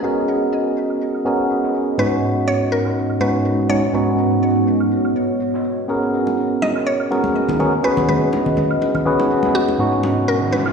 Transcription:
0.00 1.23 B3 medium
0.00 1.23 C#4 medium
0.00 1.23 F#4 medium
0.00 0.25 G#4 medium
0.00 3.21 G#4 medium
0.00 5.89 D#5 medium
0.00 tambourine medium
0.04 1.23 G#4 medium
0.04 1.23 A#4 medium
0.28 tambourine medium
0.41 closed hi-hat soft
0.53 tambourine medium
0.65 closed hi-hat soft
0.77 tambourine medium
0.90 high woodblock medium
1.02 tambourine medium
1.14 high woodblock medium
1.25 1.96 B3 medium
1.25 1.96 C#4 medium
1.25 1.96 F#4 medium
1.25 1.96 G#4 medium
1.25 1.97 A#4 medium
1.25 tambourine medium
1.50 tambourine medium
1.63 snare soft
1.75 tambourine medium
1.98 3.18 G#2 medium
1.98 5.89 G#2 medium
1.98 3.18 B3 medium
1.98 3.18 C#4 medium
1.98 3.18 D#4 medium
1.98 3.19 F#4 medium
1.98 2.44 B4 loud
1.98 tambourine medium
2.08 6.92 B3 medium
2.13 closed hi-hat soft
2.23 tambourine medium
2.48 2.73 C#5 loud
2.48 tambourine medium
2.72 3.22 A#4 medium
2.72 tambourine medium
2.85 snare soft
2.85 high woodblock medium
2.91 6.79 F#4 medium
2.97 tambourine medium
3.10 high woodblock medium
3.20 3.67 G#2 medium
3.20 3.67 B3 medium
3.20 3.67 C#4 medium
3.20 3.67 D#4 medium
3.20 3.67 F#4 medium
3.20 3.71 B4 medium
3.20 tambourine medium
3.40 7.46 C#5 medium
3.45 tambourine medium
3.69 3.82 G#2 medium
3.69 3.82 B3 medium
3.69 3.82 C#4 medium
3.69 3.82 D#4 medium
3.69 3.82 F#4 medium
3.69 4.39 C#5 medium
3.69 tambourine medium
3.83 closed hi-hat soft
3.93 5.13 G#2 medium
3.93 5.13 B3 medium
3.93 5.13 C#4 medium
3.93 5.13 D#4 medium
3.93 5.14 F#4 medium
3.93 tambourine medium
4.18 tambourine medium
4.32 closed hi-hat soft
4.43 tambourine medium
4.56 closed hi-hat soft
4.67 tambourine medium
4.80 high woodblock medium
4.92 tambourine medium
5.05 high woodblock medium
5.16 tambourine medium
5.40 tambourine medium
5.54 snare soft
5.64 tambourine medium
5.88 7.08 B3 medium
5.88 7.08 C#4 medium
5.88 7.08 F#4 medium
5.88 10.73 G#4 medium
5.88 7.09 G#4 medium
5.88 7.09 A#4 medium
5.88 tambourine medium
6.02 10.73 D#5 medium
6.02 closed hi-hat soft
6.14 tambourine medium
6.27 high bongo soft
6.37 tambourine medium
6.62 6.87 D#5 loud
6.62 tambourine medium
6.62 high bongo medium
6.75 snare soft
6.75 high woodblock medium
6.86 7.56 C#5 medium
6.86 tambourine medium
7.00 high woodblock medium
7.10 7.57 B3 medium
7.10 7.57 C#4 medium
7.10 7.57 F#4 medium
7.10 7.57 G#4 medium
7.10 7.57 A#4 medium
7.10 tambourine medium
7.10 high bongo soft
7.24 high conga medium
7.36 tambourine medium
7.48 high bongo medium
7.48 low conga medium
7.59 7.72 B3 medium
7.59 7.72 C#4 medium
7.59 7.72 F#4 medium
7.59 7.72 G#4 medium
7.59 7.72 A#4 medium
7.59 tambourine medium
7.59 high conga medium
7.72 closed hi-hat soft
7.83 9.03 B3 medium
7.83 9.03 C#4 medium
7.83 9.03 F#4 medium
7.83 9.04 G#4 medium
7.83 8.07 B4 medium
7.83 9.04 B4 medium
7.83 tambourine medium
7.97 high bongo soft
7.97 low conga medium
8.09 9.59 B4 medium
8.09 tambourine medium
8.09 high conga medium
8.22 closed hi-hat soft
8.33 tambourine medium
8.33 high bongo medium
8.46 closed hi-hat soft
8.46 low conga medium
8.57 tambourine medium
8.57 high conga medium
8.71 high woodblock medium
8.81 tambourine medium
8.81 high bongo soft
8.95 low conga medium
8.95 high woodblock medium
9.05 9.76 B3 medium
9.05 9.76 C#4 medium
9.05 9.77 F#4 medium
9.05 9.77 G#4 medium
9.05 9.77 B4 medium
9.05 tambourine medium
9.20 high bongo medium
9.31 tambourine medium
9.43 snare soft
9.43 high conga medium
9.55 10.30 F#4 medium
9.55 tambourine medium
9.68 high bongo soft
9.68 high conga medium
9.78 10.73 G#2 medium
9.78 10.73 B3 medium
9.78 10.73 C#4 medium
9.78 10.73 D#4 medium
9.78 10.73 F#4 medium
9.78 tambourine medium
9.78 riser medium
9.92 closed hi-hat soft
10.01 10.73 B3 medium
10.01 tambourine medium
10.01 high bongo medium
10.27 10.53 A#4 medium
10.27 tambourine medium
10.52 10.73 B4 medium
10.52 tambourine medium
10.52 high bongo medium
10.66 snare soft
10.66 high woodblock medium

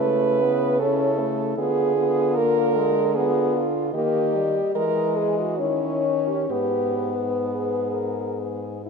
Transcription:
0.00 1.54 C#3 medium
0.00 0.43 A3 medium
0.00 0.77 E4 medium
0.00 0.81 B4 loud
0.41 0.82 B3 medium
0.79 1.21 C#4 medium
0.79 1.62 E4 medium
0.79 1.57 A4 medium
1.19 1.57 A3 medium
1.57 3.89 D3 medium
1.57 1.96 B3 medium
1.57 2.99 F4 medium
1.57 2.36 G#4 medium
1.97 2.38 B3 medium
2.35 2.78 A#3 medium
2.35 3.17 A#4 loud
2.77 3.18 G#3 medium
3.15 3.67 B3 medium
3.15 3.92 F4 medium
3.15 3.57 G#4 medium
3.55 3.93 F4 medium
3.93 4.58 D#3 medium
3.93 4.36 A#3 medium
3.93 4.73 G4 medium
3.93 4.71 D#5 medium
4.34 4.77 G3 medium
4.75 5.62 E3 medium
4.75 5.58 G#3 medium
4.75 5.19 A#4 medium
4.75 5.60 D#5 medium
5.17 5.38 G#4 medium
5.39 5.63 F#4 medium
5.59 6.49 D#3 medium
5.59 6.52 C#4 medium
5.59 6.05 E4 medium
5.59 6.49 C#5 medium
6.04 6.29 D#4 medium
6.27 6.49 G4 medium
6.49 8.90 G#2 medium
6.49 8.86 B3 medium
6.49 7.12 G4 medium
6.49 7.44 B4 soft
7.46 8.36 G#4 medium
7.46 7.94 B4 medium
7.92 8.41 A#4 medium
8.39 8.85 G#4 soft
8.85 8.90 E4 medium

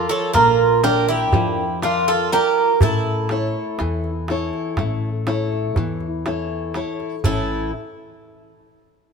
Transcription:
0.00 0.33 F3 medium
0.00 0.65 F4 medium
0.00 0.65 A#4 soft
0.00 0.65 D5 medium
0.09 0.33 A4 medium
0.09 0.34 C#5 medium
0.09 darbuka tek soft
0.33 1.34 A#1 medium
0.33 1.31 A#3 medium
0.33 0.80 F4 medium
0.33 0.83 A#4 loud
0.33 darbuka tek medium
0.33 darbuka dum medium
0.84 1.63 D4 soft
0.84 1.07 G4 medium
0.84 1.07 A#4 medium
0.84 1.63 A#4 soft
0.84 1.63 D5 medium
0.84 darbuka tek medium
1.08 1.79 E4 medium
1.08 1.84 G4 medium
1.33 2.37 F2 medium
1.33 2.29 F3 medium
1.33 darbuka dum medium
1.82 2.06 D4 medium
1.82 2.31 F4 medium
1.82 2.09 F4 medium
1.82 2.31 A#4 soft
1.82 2.32 D5 soft
1.82 darbuka tek medium
2.08 2.31 F4 medium
2.08 2.31 A4 loud
2.32 2.72 F4 medium
2.32 2.79 G4 medium
2.32 2.78 A#4 medium
2.32 2.72 A#4 soft
2.32 2.72 D5 medium
2.81 3.51 A1 medium
2.81 3.78 A3 medium
2.81 6.23 E4 medium
2.81 6.22 A4 medium
2.81 darbuka dum medium
3.29 4.10 E4 soft
3.29 4.10 A4 soft
3.29 4.10 C#5 soft
3.29 darbuka tek medium
3.79 4.49 E2 medium
3.79 4.75 E3 medium
3.79 darbuka tek medium
4.04 darbuka tek soft
4.28 5.09 E4 medium
4.28 5.09 A4 soft
4.28 5.09 C#5 medium
4.28 darbuka tek medium
4.53 darbuka tek soft
4.77 5.77 A1 medium
4.77 5.74 A3 medium
4.77 darbuka tek medium
4.77 darbuka dum medium
5.27 6.06 E4 medium
5.27 6.06 A4 soft
5.27 6.06 C#5 medium
5.27 darbuka tek medium
5.52 darbuka tek soft
5.76 6.80 E2 medium
5.76 6.72 E3 medium
5.76 darbuka dum medium
6.00 darbuka tek soft
6.26 6.74 E4 soft
6.26 6.75 A4 soft
6.26 6.75 C#5 soft
6.26 darbuka tek medium
6.74 7.15 E4 medium
6.74 7.15 A4 soft
6.74 7.15 C#5 soft
6.74 darbuka tek medium
7.00 darbuka tek soft
7.24 7.70 A1 medium
7.24 7.70 A2 medium
7.24 7.70 E3 soft
7.24 7.70 A3 soft
7.24 7.71 C#4 soft
7.24 7.71 E4 medium
7.24 7.71 E4 soft
7.24 7.70 A4 medium
7.24 darbuka dum medium

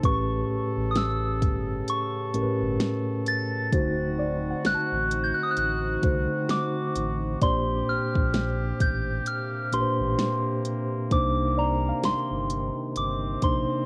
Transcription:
0.00 0.44 A1 loud
0.00 1.37 A2 medium
0.00 3.69 C#3 medium
0.00 1.37 A3 medium
0.00 1.37 C#4 medium
0.00 3.69 G4 medium
0.00 3.69 A4 medium
0.00 kick loud
0.00 closed hi-hat medium
0.04 1.37 G4 medium
0.04 1.38 B4 medium
0.04 0.93 C#6 loud
0.50 0.61 A1 soft
0.77 1.44 A1 medium
0.91 0.96 D#6 medium
0.96 1.91 E6 medium
0.96 snare loud
0.96 closed hi-hat medium
1.42 1.82 G1 medium
1.42 kick medium
1.42 closed hi-hat medium
1.88 3.23 C#6 loud
1.88 closed hi-hat medium
2.33 2.45 G1 medium
2.33 3.34 A2 medium
2.33 3.35 A3 medium
2.33 3.35 C#4 medium
2.33 3.35 G4 medium
2.33 2.42 A#4 medium
2.33 closed hi-hat medium
2.42 3.39 B4 medium
2.61 2.78 G1 medium
2.80 snare loud
2.80 closed hi-hat medium
3.26 4.70 A6 loud
3.26 closed hi-hat medium
3.72 4.53 D1 loud
3.72 5.06 D3 medium
3.72 5.06 A3 medium
3.72 9.22 C4 medium
3.72 7.38 D#4 medium
3.72 5.06 D#4 medium
3.72 7.38 F#4 medium
3.72 5.07 F#4 medium
3.72 5.07 C5 medium
3.72 kick loud
3.72 closed hi-hat medium
4.19 6.38 D5 medium
4.50 6.65 F#5 medium
4.65 4.76 A1 soft
4.65 5.25 F#6 loud
4.65 snare loud
4.65 closed hi-hat medium
4.74 6.89 A5 medium
4.92 5.32 A1 loud
5.11 closed hi-hat medium
5.24 5.34 G6 medium
5.34 5.43 F#6 medium
5.43 5.50 D#6 medium
5.51 5.57 F#6 medium
5.57 5.98 A1 medium
5.57 6.53 F#6 loud
5.57 closed hi-hat medium
6.03 6.27 C2 medium
6.03 7.04 D3 medium
6.03 7.04 A3 medium
6.03 7.04 D#4 medium
6.03 7.04 F#4 medium
6.03 7.05 C5 medium
6.03 kick loud
6.03 closed hi-hat medium
6.49 7.19 D6 medium
6.49 snare loud
6.49 closed hi-hat medium
6.96 7.36 A1 loud
6.96 closed hi-hat medium
7.41 7.82 A#1 loud
7.41 8.75 A#2 medium
7.41 13.86 C3 medium
7.41 8.75 A#3 medium
7.41 8.76 D4 medium
7.41 11.07 G4 medium
7.41 8.76 G4 medium
7.41 8.76 C5 medium
7.41 9.61 D5 medium
7.41 7.90 C6 loud
7.41 kick loud
7.41 closed hi-hat medium
7.88 7.99 A#1 soft
7.88 8.84 F6 loud
8.15 8.72 A#1 medium
8.15 kick loud
8.34 snare loud
8.34 closed hi-hat medium
8.80 9.21 A1 medium
8.80 9.28 G6 loud
8.80 kick medium
8.80 closed hi-hat medium
9.26 12.92 A#3 medium
9.26 9.74 F6 loud
9.26 closed hi-hat medium
9.72 9.84 A1 soft
9.72 10.73 A#2 medium
9.72 10.73 A#3 medium
9.72 10.73 D4 medium
9.72 10.74 G4 medium
9.72 9.81 B4 medium
9.72 11.08 C6 medium
9.72 closed hi-hat medium
9.80 10.77 C5 medium
10.00 10.16 A1 loud
10.19 snare loud
10.19 closed hi-hat medium
10.65 closed hi-hat medium
11.11 11.92 C2 loud
11.11 12.44 C3 medium
11.11 13.86 D#3 medium
11.11 12.45 A#3 medium
11.11 12.45 D4 medium
11.11 12.45 D#4 medium
11.11 12.45 C5 medium
11.11 11.55 D6 loud
11.11 kick loud
11.11 closed hi-hat medium
11.57 13.77 D5 medium
11.57 12.01 A#5 medium
11.89 13.86 F5 medium
12.03 12.14 G1 soft
12.03 12.99 C6 medium
12.03 snare loud
12.03 closed hi-hat medium
12.31 12.71 G1 loud
12.50 closed hi-hat medium
12.96 13.36 G1 loud
12.96 13.86 C4 medium
12.96 13.44 D6 medium
12.96 closed hi-hat medium
13.41 13.66 A#1 medium
13.41 13.86 C3 medium
13.41 13.86 A#3 medium
13.41 13.86 D4 medium
13.41 13.86 D#4 medium
13.41 13.86 C5 medium
13.41 13.86 C6 medium
13.41 kick medium
13.41 closed hi-hat medium

